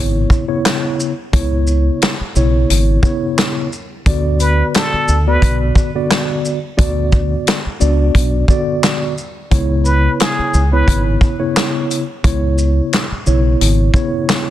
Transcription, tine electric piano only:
Already playing: C#3 B3 E4 C#5
0.48 C#3 B3 E4 C#5
1.33 C#3 B3 E4 C#5
2.36 C#3 B3 E4 C#5
3.03 C#3 B3 E4 C#5
4.06 D3 B3 F#4 D5
5.27 D3 B3 F#4 D5
5.95 D3 B3 F#4 D5
6.77 D3 B3 F#4 D5
7.80 B3 D4 F#4 D5
8.49 D3 B3 F#4 D5
9.51 C#3 B3 E4 C#5
10.72 C#3 B3 E4 C#5
11.39 C#3 B3 E4 C#5
12.24 C#3 B3 E4 C#5
13.27 C#3 B3 E4 C#5
13.94 C#3 B3 E4 C#5

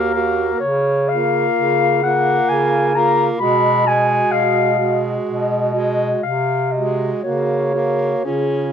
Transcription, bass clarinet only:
Already playing: D#2
0.62 C#3
1.56 C#3
2.48 C#3
3.39 B2
4.31 B2
5.27 B2
6.22 C3
7.23 C#3
8.25 C#3

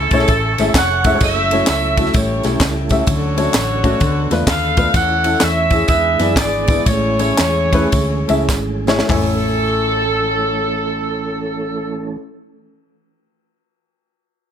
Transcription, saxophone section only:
Already playing: C#4 E4 A4
0.76 C#5 F#5
1.23 A4 C#5 E5
1.68 A4 C#5 E5
2.15 E4 G4 C#5
2.91 F#4 A4 C#5
4.49 A4 B4 F5
4.95 A4 C#5 F#5
5.42 A4 C#5 E5
5.88 G#4 B4 E5
6.36 G#4 B4 D5
6.86 E4 G#4 C#5
9.09 A4

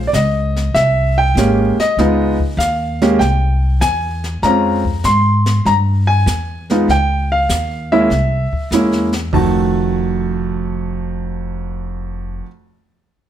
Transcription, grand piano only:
0.07 D5
0.14 D#5
0.75 E5
1.18 G5
1.38 G#3 A#3 C#4 G4
1.80 D#5
1.99 G#3 B3 D#4 F4
2.59 F5
3.02 G#3 A#3 C#4 G4
3.19 G5
3.81 G#5
4.43 G#3 C4 C#4 F4 A#5
5.05 C6
5.66 A#5
6.07 G#5
6.71 G#3 B3 D#4 F4
6.91 G5
7.32 F5
7.92 G#3 A#3 C#4 E4 E5
8.73 G#3 A#3 C#4 E4
9.33 F2 D#3 A3 F#4 A5

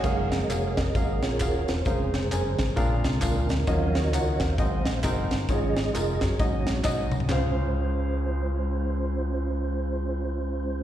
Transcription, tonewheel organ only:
0.03 F3 G#3 A#3 G#4 A#4 F5
0.30 D#5
0.48 C#5
0.77 G#4 A#4 D#5
0.95 F3 G#3 A#3
1.23 F4 A#4 C#5
1.69 C5
1.86 C#3 G#3 C4 G#4 C5
2.76 D3 G#3 C4
3.22 D4 F4 A#4
3.68 F3 F#3 C#4 A#4 C#5 F5
3.96 F#4 A#4 D#5
4.41 C5 F5
4.58 F#3 A#3 C4
5.48 F3 G#3 C#4 G#4 D#5
6.21 F#4 C#5
6.38 F#3 A#3 C#4
7.29 G#3 C#4 F4 C5

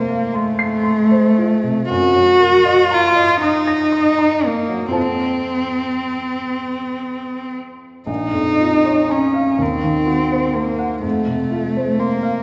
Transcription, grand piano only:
Already playing: F2 C3 F4 C5 C6
0.10 F5
0.34 C6
0.59 C7
0.83 C6
1.11 C5
1.38 F4
1.63 C3
1.90 F#2
2.16 F#3
2.40 A#4
2.65 D#5
2.91 A#5
3.16 D#5
3.42 D#6
3.67 A#6
3.92 D#6
4.19 A#5
4.43 D#5
4.69 F#3
4.88 F2 F4 C5
4.92 A5
8.07 A#1
8.33 F2
8.60 F4
8.85 C#5
9.10 A#5
9.34 F5
9.58 D#2
9.84 D#3
10.06 F#4
10.32 C5
10.54 C6
10.79 F#5
11.02 F2
11.26 C3
11.51 F4
11.77 C5
12.00 C6
12.23 F5

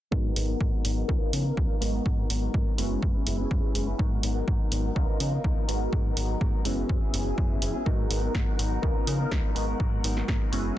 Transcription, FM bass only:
0.12 G#2
0.36 G#1
0.61 G#2
0.85 G#1
1.09 C#2
1.33 C#3
1.57 C#2
1.81 G#1
2.06 G#2
2.30 G#1
2.54 G#2
2.78 F#1
3.03 F#2
3.15 F#1
3.27 F#1
3.51 F#2
3.75 F#1
3.99 G#2
4.23 G#1
4.48 G#2
4.72 G#1
4.96 C#2
5.20 C#3
5.44 C#2
5.69 G#1
5.93 G#2
6.17 G#1
6.41 G#2
6.65 F#1
6.89 F#2
7.02 F#1
7.14 F#1
7.38 F#2
7.62 F#1
7.86 G#2
8.10 G#1
8.35 G#2
8.59 G#1
8.83 C#2
9.07 C#3
9.32 C#2
9.56 G#1
9.80 G#2
10.04 G#1
10.28 G#2
10.52 F#1

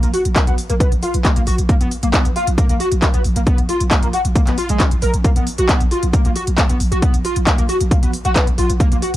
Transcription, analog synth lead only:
0.03 A#3
0.13 F#4
0.36 A#3
0.47 B3
0.69 A#3
0.80 B3
1.02 F4
1.25 A#3
1.36 A#3
1.47 F#4
1.69 A#3
1.81 B3
2.03 A#3
2.14 B3
2.36 F4
2.58 A#3
2.69 A#3
2.80 F#4
3.02 A#3
3.14 B3
3.36 A#3
3.47 B3
3.69 F4
3.91 A#3
4.03 A#3
4.13 F#4
4.36 A#3
4.47 B3
4.58 F4
4.70 G#3
4.80 C#4
5.02 A#4
5.25 A#3
5.36 B3
5.58 F#4
5.69 B3
5.91 F4
6.14 A#3
6.25 A#3
6.36 F#4
6.58 A#3
6.69 B3
6.91 F#4
7.02 B3
7.25 F4
7.47 A#3
7.58 A#3
7.69 F#4
7.91 A#3
8.03 B3
8.25 F#4
8.36 B3
8.58 F4
8.80 A#3
8.92 A#3
9.02 F#4

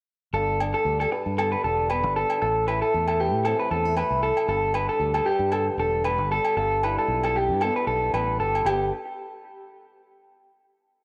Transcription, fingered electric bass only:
0.33 G1
0.85 D2
1.26 G2
1.64 E1
2.03 G1
2.42 A1
2.94 E2
3.33 A2
3.71 E2
4.10 C2
4.48 G1
5.00 D2
5.39 G2
5.78 E1
6.18 G1
6.57 G1
7.08 B1
7.49 G2
7.87 B1
8.13 A1
8.40 G1
8.65 G1

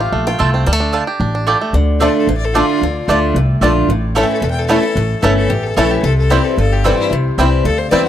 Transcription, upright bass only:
0.12 A#1
0.40 C2
0.67 D2
1.20 A1
1.73 D2
2.27 A1
2.81 D2
3.08 D2
3.34 C2
3.61 A#1
3.89 A1
4.42 E1
4.96 A1
5.23 G1
5.50 A1
5.77 A#1
6.03 C2
6.57 G1
7.11 C2
7.38 C2
7.65 D2
7.92 E2

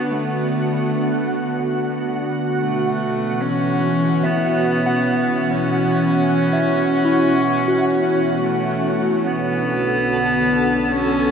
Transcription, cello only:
Already playing: B3
0.10 A3
2.59 A3
3.41 C#4
4.25 B3
5.50 C#4
8.42 A3
9.26 B3
10.92 C#4

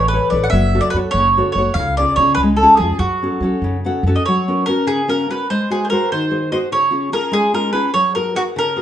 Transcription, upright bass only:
Already playing: A1
0.32 A1
0.52 F#1
0.94 F#2
1.14 F#1
1.55 F#1
1.75 C#2
2.17 C#3
2.37 C#2
2.79 F2
2.99 F#2
3.40 F#3
3.62 F#2
4.03 F#2

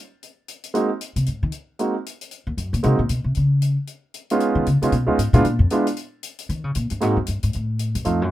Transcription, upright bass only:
1.16 C3
1.28 G#2
1.43 D#3
2.47 D#2
2.57 F#2
2.73 A#2
2.84 C3
2.99 A#2
3.10 B2
3.24 C3
3.37 C#3
4.55 D#3
4.67 C#3
4.82 C3
4.92 B2
5.07 D#2
5.18 G#2
5.33 B2
5.44 A#2
5.59 F2
6.49 D#3
6.64 C#3
6.76 A#2
6.91 G2
7.02 G#2
7.17 F#2
7.28 G2
7.43 G#2
7.55 A2
7.95 F#2
8.06 F2
8.22 F#2

